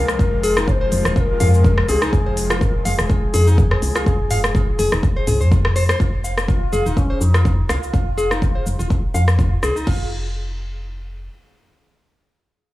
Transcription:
Already playing: C3 F3 G#3 F4 A#4
0.08 cross-stick, shaker
0.19 F1 F4, kick, shaker
0.43 G#4, open hi-hat, shaker
0.57 D#4, cross-stick, shaker
0.68 C5 C#5, kick, mid tom, shaker
0.81 C5
0.92 F1, open hi-hat, shaker
1.05 D#1 F4, cross-stick, shaker
1.16 F1 F4 C5, kick, shaker
1.20 A#4
1.40 F2 F5, mid tom, open hi-hat, shaker
1.54 shaker
1.64 F2 F4, kick, shaker
1.78 cross-stick
1.89 C2 G#4, open hi-hat, shaker
2.02 D#4, cross-stick, shaker
2.13 F1, kick, shaker
2.26 C5
2.37 open hi-hat, shaker
2.50 F4, cross-stick, shaker
2.56 C5
2.61 F4 A#4, kick, mid tom, shaker
2.79 A#4
2.85 F1 G#4 F5, open hi-hat, shaker
2.99 D#1, cross-stick, shaker
3.10 F1 F4, kick, shaker
3.34 F2 G#4, open hi-hat, shaker
3.47 D#4, shaker
3.58 F2, kick, mid tom, shaker
3.71 C5, cross-stick
3.82 C2, open hi-hat, shaker
3.95 F4, cross-stick, shaker
4.06 F1 F4, kick, shaker
4.31 F5, mid tom, open hi-hat, shaker
4.44 cross-stick, shaker
4.55 F4, kick, mid tom, shaker
4.79 F1 G#4, open hi-hat, shaker
4.92 D#1 D#4, cross-stick, shaker
5.03 F1, kick, shaker
5.16 C5
5.27 C2 G#4, mid tom, open hi-hat, shaker
5.41 F2 C5, shaker
5.52 F4, kick, shaker
5.65 cross-stick
5.76 C5, open hi-hat, shaker
5.89 C5, cross-stick, shaker
6.00 F1 F4, kick, shaker
6.24 F5, shaker
6.38 cross-stick, shaker
6.48 F4 F#4, kick, shaker
6.53 F4
6.73 F1 G#4, shaker
6.86 D#1 D#4, shaker
6.97 F1 C#4, kick, shaker
7.10 C5
7.21 F2 D#4, shaker
7.34 F4, cross-stick, shaker
7.45 F2 F4, kick, shaker
7.69 C2 F4 F5, cross-stick, shaker
7.83 shaker
7.93 F1 F4, kick, shaker
8.18 G#4, shaker
8.31 D#4, cross-stick, shaker
8.42 kick, shaker
8.55 C5
8.66 F1, shaker
8.79 D#1 F4, shaker
8.90 F1 F4, kick, shaker
9.14 F2 F5, shaker
9.28 cross-stick, shaker
9.39 F2 F4, kick, shaker
9.63 C2 G#4, cross-stick, shaker
9.76 D#4, shaker
9.87 F1 F4, kick, crash

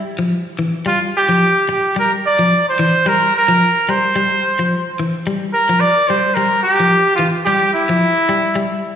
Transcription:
0.19 F3
0.59 E3
0.86 G3 F4
1.17 G4
1.29 F3
1.69 G4, muted clean electric guitar stroke
1.96 G3 A#4
2.26 D5
2.39 F3
2.69 C5
2.79 E3
3.06 G3 A#4
3.36 A#4
3.48 F3
3.89 G3 C5
4.16 G3
4.59 F3
4.99 E3
5.27 G3
5.53 A#4
5.69 F3
5.80 D5
6.08 G3 C5
6.34 G3 A#4
6.63 G4
6.80 F3
7.15 E3 F4
7.45 G3 G4
7.74 E4
7.89 F3
8.29 G3
8.56 G3

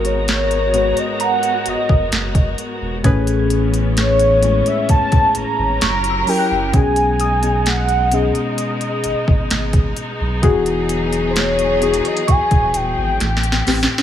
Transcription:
Already playing: G#1 G#2 G#3 B3 D#4 F#4 A#4 A#5
0.03 G#2 G#3 B3 F#4 C#5, closed hi-hat
0.28 C#5, snare, closed hi-hat
0.51 closed hi-hat
0.73 G#2 G#3 B3 F#4 B4, closed hi-hat
0.97 D#5, closed hi-hat
1.20 F#5 A#5, closed hi-hat
1.43 closed hi-hat
1.66 F#1 D#5, closed hi-hat
1.89 F#1, kick
2.12 F#1, snare, closed hi-hat
2.35 kick, closed hi-hat
2.58 closed hi-hat
2.81 E1
3.03 A1 A2 E3 A3 B3 C#4 G#4 B4 G#6, kick, closed hi-hat
3.27 closed hi-hat
3.50 closed hi-hat
3.74 closed hi-hat
3.97 C#5, snare, closed hi-hat
4.20 closed hi-hat
4.42 A2 G#3 A3 C#4 C#5, closed hi-hat
4.66 E5, closed hi-hat
4.89 A5, kick, closed hi-hat
5.12 kick, closed hi-hat
5.35 G#1 A#5, closed hi-hat
5.58 G#1
5.81 F#1 F#3 E4 G4 A#4 C#6, snare, closed hi-hat
6.04 closed hi-hat
6.10 E6
6.26 F#3 C#4 E4 G4 A#4 G5, open hi-hat
6.38 F#6
6.51 F#1
6.72 B1 B2 G#3 B3 C#4 D#4 G#4 G#5, kick, closed hi-hat
6.96 closed hi-hat
7.20 D#6, closed hi-hat
7.42 B2 B3 C#4 D#4 G#4, closed hi-hat
7.66 F#5, snare, closed hi-hat
7.89 closed hi-hat
8.11 B2 B3 C#4 D#4 G#4 D#5, closed hi-hat
8.35 closed hi-hat
8.58 closed hi-hat
8.81 closed hi-hat
9.04 G#1, closed hi-hat
9.28 G#1, kick
9.51 G#1, snare, closed hi-hat
9.73 kick, closed hi-hat
9.97 closed hi-hat
10.20 B1
10.42 E1 E3 F#3 B3 D#4 F#4 G#4, kick, closed hi-hat
10.66 closed hi-hat
10.89 closed hi-hat
11.13 closed hi-hat
11.30 C5
11.36 C#5, snare, closed hi-hat
11.59 closed hi-hat
11.80 E3 B3 D#4 F#4 G#4, closed hi-hat
11.94 closed hi-hat
12.05 D#5, closed hi-hat
12.17 closed hi-hat
12.28 G#5 C#6, kick, closed hi-hat
12.51 D#1, kick, closed hi-hat
12.69 G#5
12.74 D#1 G5, closed hi-hat
12.97 G#1
13.20 A1 A3 C4 G4, snare, closed hi-hat
13.37 snare
13.43 closed hi-hat
13.52 snare
13.65 A1 A2 A3 C4 G4 B4, snare, open hi-hat
13.83 snare
13.98 snare

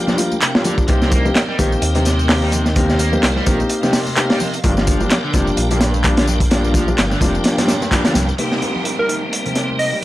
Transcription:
Already playing: D4 A#4 F5 G5
0.08 G2 F3 G3 A#3 D4, snare, tambourine, low conga
0.18 F3 G3 A#3 F4, closed hi-hat, tambourine
0.32 tambourine, high conga
0.41 C3, clap, closed hi-hat, tambourine
0.55 F2 F3 G3 A#3 F4, snare
0.64 D3 F3 G3 A#3 D4, closed hi-hat, tambourine, low conga
0.78 kick, tambourine
0.88 C2 C3 A#3 C4 D#4 G4 D#5 G5, kick, closed hi-hat, tambourine
1.02 C3, snare, tambourine
1.11 A#3, kick, closed hi-hat, tambourine, high conga
1.25 A#3 C4 D#4 G4, tambourine, low conga
1.35 snare, clap, closed hi-hat, tambourine
1.49 G3
1.59 A#1 D#3 A#3 C4 D#4 G4, kick, closed hi-hat, tambourine
1.72 tambourine
1.82 D#2, closed hi-hat, tambourine
1.95 C3 A#3 C4 D#4 G4, closed hi-hat, tambourine, low conga
2.05 snare, closed hi-hat, tambourine
2.19 tambourine, high conga
2.29 A#3 C4 D#4 G4, snare, clap, open hi-hat, tambourine
2.42 G3
2.52 C3, closed hi-hat, tambourine, low conga
2.66 snare, tambourine
2.76 C3 A#3 C4 D#4 G4, kick, closed hi-hat, tambourine
2.89 C3, snare, tambourine
2.99 A#3, closed hi-hat, tambourine, high conga
3.13 A#3 C4 D#4 G4, tambourine, low conga
3.23 C2, snare, clap, closed hi-hat, tambourine
3.36 G3, snare, high conga
3.46 A#1 D#3 A#3 C4 D#4 G4, kick, closed hi-hat, tambourine
3.60 tambourine
3.69 closed hi-hat, tambourine
3.83 C3 A#3 C4 D#4 G4, snare, tambourine, low conga
3.93 snare, open hi-hat, tambourine
4.07 tambourine, high conga
4.16 A#3 C4 D#4 G4, clap, closed hi-hat, tambourine
4.30 G3, snare, open hi-hat
4.40 C3, tambourine, low conga
4.54 closed hi-hat, tambourine
4.64 G1 G2 F3 G3 A#3 D4 A#4 G5, kick, closed hi-hat, tambourine
4.77 G2, snare, tambourine
4.87 F3, kick, closed hi-hat, tambourine, high conga
5.00 F3 G3 A#3 D4, tambourine, low conga
5.10 snare, clap, closed hi-hat, tambourine
5.24 D3
5.33 F1 C3 F3 G3 A#3 D4, kick, closed hi-hat, tambourine
5.47 tambourine
5.57 A#1, closed hi-hat, tambourine
5.71 G2 F3 G3 A#3 D4, closed hi-hat, tambourine, low conga
5.81 snare, closed hi-hat, tambourine
5.94 tambourine, high conga
6.04 F3 G3 A#3 D4, kick, clap, closed hi-hat, tambourine
6.17 D3, snare, closed hi-hat
6.27 G2, tambourine, low conga
6.40 kick, closed hi-hat, tambourine
6.51 G2 F3 G3 A#3 D4, snare, closed hi-hat, tambourine
6.64 G2, tambourine
6.74 F3, kick, closed hi-hat, tambourine, high conga
6.88 F3 G3 A#3 D4, tambourine, low conga
6.98 G1, snare, clap, closed hi-hat, tambourine
7.11 D3, snare, tambourine, high conga
7.21 F1 C3 F3 G3 A#3 D4, kick, closed hi-hat, tambourine
7.35 tambourine
7.44 snare, closed hi-hat, tambourine
7.58 G2 F3 G3 A#3 D4, snare, closed hi-hat, tambourine, low conga
7.68 snare, closed hi-hat, tambourine
7.81 snare, tambourine, high conga
7.91 F3 G3 A#3 D4, kick, clap, closed hi-hat, tambourine
8.05 D3, snare, closed hi-hat, tambourine
8.14 C2 G2, snare, closed hi-hat, tambourine, low conga
8.29 tambourine
8.38 C3 G3 A#3 C4 D#4 G4 A#4, closed hi-hat, downlifter
8.52 C3, snare
8.62 A#3, closed hi-hat, high conga
8.76 low conga
8.85 closed hi-hat
8.99 G3 A#4
9.09 D#3, closed hi-hat
9.33 closed hi-hat
9.46 C3, closed hi-hat, low conga
9.55 snare, closed hi-hat
9.70 high conga
9.79 D#5, open hi-hat
9.93 G3

